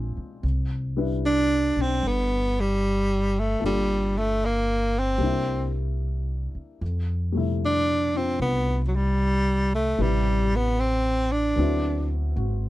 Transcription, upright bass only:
0, 0, Header, 1, 3, 480
1, 0, Start_track
1, 0, Tempo, 794702
1, 262, Time_signature, 4, 2, 24, 8
1, 7665, End_track
2, 0, Start_track
2, 0, Title_t, "Upright bass"
2, 0, Program_c, 0, 32
2, 0, Note_on_c, 0, 34, 74
2, 85, Note_off_c, 0, 34, 0
2, 261, Note_on_c, 0, 36, 62
2, 1038, Note_off_c, 0, 36, 0
2, 1065, Note_on_c, 0, 35, 51
2, 1210, Note_off_c, 0, 35, 0
2, 1223, Note_on_c, 0, 31, 69
2, 2158, Note_off_c, 0, 31, 0
2, 2179, Note_on_c, 0, 31, 64
2, 3118, Note_off_c, 0, 31, 0
2, 3130, Note_on_c, 0, 36, 67
2, 3925, Note_off_c, 0, 36, 0
2, 4115, Note_on_c, 0, 41, 60
2, 5052, Note_off_c, 0, 41, 0
2, 5069, Note_on_c, 0, 36, 67
2, 6009, Note_off_c, 0, 36, 0
2, 6031, Note_on_c, 0, 33, 63
2, 6964, Note_off_c, 0, 33, 0
2, 6988, Note_on_c, 0, 38, 67
2, 7442, Note_off_c, 0, 38, 0
2, 7468, Note_on_c, 0, 32, 60
2, 7665, Note_off_c, 0, 32, 0
2, 7665, End_track
3, 0, Start_track
3, 0, Title_t, "Muted upright bass strokes"
3, 102, Note_on_c, 9, 29, 29
3, 162, Note_off_c, 9, 29, 0
3, 3954, Note_on_c, 9, 29, 28
3, 4015, Note_off_c, 9, 29, 0
3, 7665, End_track
0, 0, End_of_file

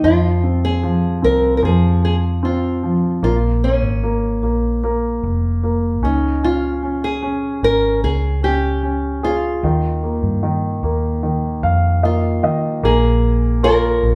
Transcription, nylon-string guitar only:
0, 0, Header, 1, 2, 480
1, 0, Start_track
1, 0, Tempo, 800000
1, 19, Time_signature, 4, 2, 24, 8
1, 8490, End_track
2, 0, Start_track
2, 0, Title_t, "Nylon-string guitar"
2, 0, Program_c, 0, 24
2, 24, Note_on_c, 0, 65, 74
2, 385, Note_off_c, 0, 65, 0
2, 388, Note_on_c, 0, 68, 77
2, 744, Note_off_c, 0, 68, 0
2, 747, Note_on_c, 0, 70, 88
2, 936, Note_off_c, 0, 70, 0
2, 943, Note_on_c, 0, 70, 66
2, 982, Note_off_c, 0, 70, 0
2, 990, Note_on_c, 0, 68, 73
2, 1208, Note_off_c, 0, 68, 0
2, 1228, Note_on_c, 0, 68, 69
2, 1292, Note_off_c, 0, 68, 0
2, 1469, Note_on_c, 0, 65, 64
2, 1936, Note_off_c, 0, 65, 0
2, 1944, Note_on_c, 0, 65, 74
2, 2008, Note_off_c, 0, 65, 0
2, 2184, Note_on_c, 0, 61, 75
2, 2877, Note_off_c, 0, 61, 0
2, 3628, Note_on_c, 0, 63, 72
2, 3867, Note_on_c, 0, 65, 80
2, 3870, Note_off_c, 0, 63, 0
2, 4222, Note_off_c, 0, 65, 0
2, 4225, Note_on_c, 0, 68, 81
2, 4584, Note_off_c, 0, 68, 0
2, 4586, Note_on_c, 0, 70, 88
2, 4806, Note_off_c, 0, 70, 0
2, 4824, Note_on_c, 0, 68, 85
2, 5061, Note_off_c, 0, 68, 0
2, 5064, Note_on_c, 0, 67, 87
2, 5544, Note_off_c, 0, 67, 0
2, 5547, Note_on_c, 0, 65, 79
2, 7199, Note_off_c, 0, 65, 0
2, 7230, Note_on_c, 0, 65, 67
2, 7680, Note_off_c, 0, 65, 0
2, 7710, Note_on_c, 0, 68, 89
2, 8182, Note_off_c, 0, 68, 0
2, 8185, Note_on_c, 0, 70, 99
2, 8490, Note_off_c, 0, 70, 0
2, 8490, End_track
0, 0, End_of_file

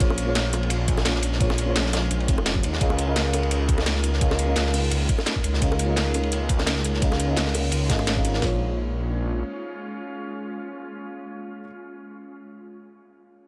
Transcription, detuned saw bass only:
0, 0, Header, 1, 2, 480
1, 0, Start_track
1, 0, Key_signature, -5, "minor"
1, 0, Tempo, 350877
1, 3, Time_signature, 4, 2, 24, 8
1, 18437, End_track
2, 0, Start_track
2, 0, Title_t, "Detuned saw bass"
2, 0, Program_c, 0, 39
2, 3, Note_on_c, 0, 34, 97
2, 2385, Note_off_c, 0, 34, 0
2, 2404, Note_on_c, 0, 34, 80
2, 2865, Note_off_c, 0, 34, 0
2, 2883, Note_on_c, 0, 34, 96
2, 3123, Note_on_c, 0, 29, 97
2, 3144, Note_off_c, 0, 34, 0
2, 3605, Note_on_c, 0, 39, 80
2, 3625, Note_off_c, 0, 29, 0
2, 3821, Note_off_c, 0, 39, 0
2, 3844, Note_on_c, 0, 37, 99
2, 6225, Note_off_c, 0, 37, 0
2, 6245, Note_on_c, 0, 37, 78
2, 6706, Note_off_c, 0, 37, 0
2, 6723, Note_on_c, 0, 37, 97
2, 6940, Note_off_c, 0, 37, 0
2, 7443, Note_on_c, 0, 37, 102
2, 7661, Note_off_c, 0, 37, 0
2, 7683, Note_on_c, 0, 37, 96
2, 10065, Note_off_c, 0, 37, 0
2, 10085, Note_on_c, 0, 37, 80
2, 10546, Note_off_c, 0, 37, 0
2, 10564, Note_on_c, 0, 37, 96
2, 10803, Note_on_c, 0, 32, 89
2, 10823, Note_off_c, 0, 37, 0
2, 11505, Note_off_c, 0, 32, 0
2, 11522, Note_on_c, 0, 34, 93
2, 12908, Note_off_c, 0, 34, 0
2, 18437, End_track
0, 0, End_of_file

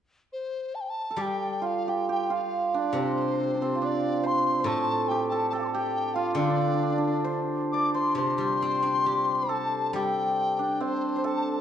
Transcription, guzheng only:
0, 0, Header, 1, 2, 480
1, 0, Start_track
1, 0, Tempo, 883652
1, 641, Time_signature, 2, 2, 24, 8
1, 1607, Tempo, 858369
1, 3527, Tempo, 892857
1, 5447, Tempo, 853485
1, 6372, End_track
2, 0, Start_track
2, 0, Title_t, "Guzheng"
2, 0, Program_c, 0, 107
2, 633, Note_on_c, 0, 55, 46
2, 1590, Note_on_c, 0, 48, 49
2, 2086, Note_off_c, 0, 55, 0
2, 2549, Note_on_c, 0, 45, 48
2, 2559, Note_off_c, 0, 48, 0
2, 3502, Note_on_c, 0, 50, 52
2, 3517, Note_off_c, 0, 45, 0
2, 4471, Note_on_c, 0, 48, 45
2, 4596, Note_on_c, 0, 55, 36
2, 4726, Note_on_c, 0, 60, 39
2, 4835, Note_on_c, 0, 62, 36
2, 4959, Note_off_c, 0, 50, 0
2, 4962, Note_on_c, 0, 67, 39
2, 5424, Note_off_c, 0, 55, 0
2, 5430, Note_on_c, 0, 55, 49
2, 5686, Note_off_c, 0, 60, 0
2, 5800, Note_off_c, 0, 62, 0
2, 5917, Note_off_c, 0, 48, 0
2, 5922, Note_off_c, 0, 67, 0
2, 6372, Note_off_c, 0, 55, 0
2, 6372, End_track
0, 0, End_of_file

